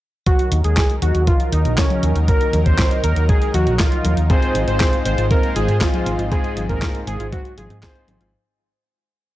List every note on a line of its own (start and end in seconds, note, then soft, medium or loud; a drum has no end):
0.26 4.26 D#3 medium
0.26 4.26 F#3 medium
0.26 8.29 D#4 medium
0.26 0.57 F#4 loud
0.26 4.26 A#4 medium
0.26 kick loud
0.26 closed hi-hat medium
0.39 closed hi-hat soft
0.52 0.63 D#2 medium
0.52 closed hi-hat loud
0.64 0.75 D#2 medium
0.64 0.95 G#4 loud
0.64 closed hi-hat soft
0.77 kick loud
0.77 snare loud
0.77 clap loud
0.77 closed hi-hat medium
0.90 closed hi-hat soft
1.02 1.13 D#2 medium
1.02 1.23 F#4 medium
1.02 closed hi-hat loud
1.15 1.26 D#2 medium
1.15 closed hi-hat soft
1.27 1.48 F4 medium
1.27 kick loud
1.27 closed hi-hat medium
1.40 closed hi-hat soft
1.52 1.63 D#2 loud
1.52 1.73 D#4 medium
1.52 closed hi-hat loud
1.65 1.76 A#1 medium
1.65 closed hi-hat soft
1.78 2.19 C#4 loud
1.78 kick loud
1.78 snare loud
1.78 clap loud
1.78 closed hi-hat medium
1.90 closed hi-hat soft
1.90 high tom medium
2.03 2.14 D#2 medium
2.03 closed hi-hat loud
2.16 2.27 D#2 medium
2.16 closed hi-hat soft
2.28 2.59 A#4 loud
2.28 kick loud
2.28 closed hi-hat medium
2.41 closed hi-hat soft
2.53 2.64 D#2 loud
2.53 closed hi-hat loud
2.53 high tom medium
2.66 2.77 D#2 medium
2.66 2.97 C5 loud
2.66 kick medium
2.66 closed hi-hat soft
2.79 kick loud
2.79 snare loud
2.79 clap loud
2.79 closed hi-hat medium
2.91 closed hi-hat soft
3.04 3.15 D#2 loud
3.04 3.24 A#4 medium
3.04 closed hi-hat medium
3.16 3.27 D#2 medium
3.16 closed hi-hat soft
3.29 3.49 G#4 medium
3.29 kick loud
3.29 closed hi-hat medium
3.42 closed hi-hat soft
3.54 3.65 D#2 medium
3.54 3.75 F#4 medium
3.54 closed hi-hat loud
3.54 high tom medium
3.67 3.78 A#1 medium
3.67 closed hi-hat soft
3.79 4.20 F4 loud
3.79 kick loud
3.79 snare loud
3.79 clap loud
3.79 closed hi-hat medium
3.92 closed hi-hat soft
4.05 4.16 D#2 loud
4.05 closed hi-hat loud
4.05 high tom medium
4.17 4.28 D#2 medium
4.17 closed hi-hat soft
4.30 5.78 G#2 loud
4.30 8.29 G#3 medium
4.30 5.78 C4 medium
4.30 4.40 C4 loud
4.30 5.78 D#4 medium
4.30 5.78 F4 medium
4.30 8.29 F4 medium
4.30 5.78 G#4 loud
4.30 4.60 C5 loud
4.30 8.29 C5 medium
4.30 kick loud
4.30 closed hi-hat medium
4.42 closed hi-hat soft
4.55 4.66 G#1 loud
4.55 4.65 F4 medium
4.55 closed hi-hat medium
4.68 4.79 G#1 medium
4.68 4.74 C4 medium
4.68 4.98 C5 loud
4.68 closed hi-hat soft
4.80 4.90 G#4 loud
4.80 kick loud
4.80 snare loud
4.80 clap loud
4.80 closed hi-hat medium
4.93 closed hi-hat soft
5.06 5.16 G#1 medium
5.06 5.16 C4 medium
5.06 5.26 C5 medium
5.06 closed hi-hat medium
5.18 5.29 G#1 medium
5.18 5.28 F4 medium
5.18 closed hi-hat soft
5.31 5.41 C4 loud
5.31 5.51 A#4 medium
5.31 kick loud
5.31 closed hi-hat medium
5.43 closed hi-hat soft
5.56 5.67 G#1 loud
5.56 5.66 F4 medium
5.56 5.76 G#4 medium
5.56 closed hi-hat medium
5.68 5.79 G#2 medium
5.68 5.75 C4 medium
5.68 closed hi-hat soft
5.81 6.29 G#2 medium
5.81 6.29 C4 medium
5.81 6.29 D#4 medium
5.81 6.29 F4 medium
5.81 6.22 F4 loud
5.81 6.29 G#4 loud
5.81 5.91 G#4 loud
5.81 kick loud
5.81 snare loud
5.81 clap loud
5.81 closed hi-hat medium
5.94 closed hi-hat soft
5.94 high tom medium
6.06 6.17 G#1 medium
6.06 6.16 C4 medium
6.06 closed hi-hat loud
6.19 6.30 G#1 medium
6.19 6.29 F4 medium
6.19 closed hi-hat soft
6.31 7.80 G#2 loud
6.31 6.42 C4 loud
6.31 7.80 C4 medium
6.31 7.80 D#4 medium
6.31 7.80 F4 medium
6.31 6.62 G#4 loud
6.31 7.80 G#4 loud
6.31 kick loud
6.31 closed hi-hat medium
6.44 closed hi-hat soft
6.57 6.68 G#1 loud
6.57 6.67 F4 medium
6.57 closed hi-hat medium
6.57 high tom medium
6.69 6.80 G#1 medium
6.69 6.75 C4 medium
6.69 7.00 A#4 loud
6.69 kick medium
6.69 closed hi-hat soft
6.82 6.92 G#4 loud
6.82 kick loud
6.82 snare loud
6.82 clap loud
6.82 closed hi-hat medium
6.95 closed hi-hat soft
7.07 7.18 G#1 medium
7.07 7.17 C4 medium
7.07 7.28 G#4 medium
7.07 closed hi-hat medium
7.20 7.31 G#1 medium
7.20 7.30 F4 medium
7.20 closed hi-hat soft
7.32 7.43 C4 loud
7.32 7.53 F#4 medium
7.32 kick loud
7.32 closed hi-hat medium
7.45 closed hi-hat soft
7.58 7.69 G#1 medium
7.58 7.68 F4 medium
7.58 7.78 G#4 medium
7.58 closed hi-hat medium
7.58 high tom medium
7.70 7.81 G#2 medium
7.70 7.76 C4 medium
7.70 closed hi-hat soft
7.83 8.30 G#2 loud
7.83 8.30 C4 medium
7.83 8.30 D#4 medium
7.83 8.30 F4 medium
7.83 8.30 G#4 loud
7.83 7.93 G#4 loud
7.83 8.24 C5 loud
7.83 kick loud
7.83 snare loud
7.83 clap loud
7.83 closed hi-hat medium
7.95 closed hi-hat soft
8.08 8.19 G#1 loud
8.08 8.18 C4 medium
8.08 closed hi-hat medium
8.08 high tom medium
8.21 8.32 G#1 medium
8.21 8.31 F4 medium
8.21 closed hi-hat soft